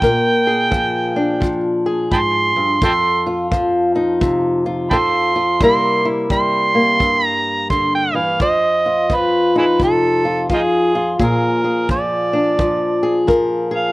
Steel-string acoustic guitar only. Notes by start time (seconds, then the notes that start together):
Already playing: A#3
0.03 A#2 A#4
0.47 G#4
0.71 F3
1.16 D4
1.40 F3
1.86 G#4
2.11 G#2
2.56 G2
2.83 F2 A4
3.26 F4
3.51 F3
3.96 D#4
4.21 C3
4.66 F4
4.92 F3 A4
5.36 F4
5.61 C3 G3 A#3 E4 A#4
6.05 E4
6.30 G3
6.75 A#3
7.00 G2
7.70 D3
8.14 E3
8.40 F2 C5
8.86 F4
9.10 F3
9.56 D#4
9.80 C3
10.25 F4
10.50 F3 F4
10.95 F4
11.19 A#2 G#4
11.64 G#4
11.90 F3
12.33 D4
12.59 F3
13.03 G#4
13.27 F3 A#4
13.71 G#4